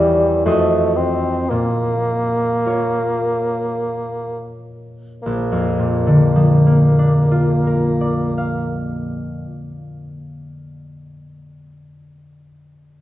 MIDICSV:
0, 0, Header, 1, 3, 480
1, 0, Start_track
1, 0, Tempo, 966184
1, 222, Tempo, 1052632
1, 702, Time_signature, 3, 2, 24, 8
1, 702, Tempo, 1151631
1, 1182, Tempo, 1242236
1, 1662, Tempo, 1354402
1, 3102, Tempo, 1379310
1, 4862, End_track
2, 0, Start_track
2, 0, Title_t, "Harp"
2, 0, Program_c, 0, 46
2, 0, Note_on_c, 0, 40, 46
2, 0, Note_on_c, 0, 70, 40
2, 0, Note_on_c, 0, 73, 35
2, 0, Note_on_c, 0, 76, 36
2, 226, Note_on_c, 0, 41, 46
2, 227, Note_on_c, 0, 72, 34
2, 228, Note_on_c, 0, 66, 35
2, 232, Note_on_c, 0, 75, 31
2, 244, Note_off_c, 0, 40, 0
2, 245, Note_off_c, 0, 70, 0
2, 245, Note_off_c, 0, 73, 0
2, 247, Note_off_c, 0, 76, 0
2, 705, Note_on_c, 0, 46, 45
2, 723, Note_off_c, 0, 41, 0
2, 723, Note_off_c, 0, 66, 0
2, 724, Note_off_c, 0, 72, 0
2, 725, Note_off_c, 0, 75, 0
2, 1185, Note_on_c, 0, 65, 31
2, 1186, Note_on_c, 0, 70, 30
2, 1190, Note_on_c, 0, 73, 33
2, 2146, Note_on_c, 0, 34, 43
2, 2165, Note_off_c, 0, 46, 0
2, 2166, Note_off_c, 0, 73, 0
2, 2238, Note_on_c, 0, 41, 37
2, 2335, Note_on_c, 0, 46, 38
2, 2433, Note_on_c, 0, 50, 42
2, 2535, Note_on_c, 0, 53, 41
2, 2607, Note_off_c, 0, 65, 0
2, 2607, Note_off_c, 0, 70, 0
2, 2645, Note_on_c, 0, 58, 35
2, 2758, Note_on_c, 0, 62, 35
2, 2875, Note_on_c, 0, 65, 37
2, 3000, Note_on_c, 0, 70, 34
2, 3121, Note_on_c, 0, 74, 31
2, 3248, Note_on_c, 0, 77, 34
2, 3521, Note_off_c, 0, 34, 0
2, 3611, Note_off_c, 0, 41, 0
2, 3706, Note_off_c, 0, 46, 0
2, 3802, Note_off_c, 0, 50, 0
2, 3876, Note_off_c, 0, 53, 0
2, 3921, Note_off_c, 0, 58, 0
2, 4033, Note_off_c, 0, 62, 0
2, 4092, Note_off_c, 0, 65, 0
2, 4093, Note_off_c, 0, 74, 0
2, 4094, Note_off_c, 0, 77, 0
2, 4095, Note_off_c, 0, 70, 0
2, 4862, End_track
3, 0, Start_track
3, 0, Title_t, "Bassoon"
3, 0, Program_c, 1, 70
3, 0, Note_on_c, 1, 55, 66
3, 221, Note_off_c, 1, 55, 0
3, 224, Note_on_c, 1, 57, 63
3, 460, Note_on_c, 1, 60, 54
3, 466, Note_off_c, 1, 57, 0
3, 700, Note_on_c, 1, 58, 66
3, 707, Note_off_c, 1, 60, 0
3, 1901, Note_off_c, 1, 58, 0
3, 2134, Note_on_c, 1, 58, 52
3, 3420, Note_off_c, 1, 58, 0
3, 4862, End_track
0, 0, End_of_file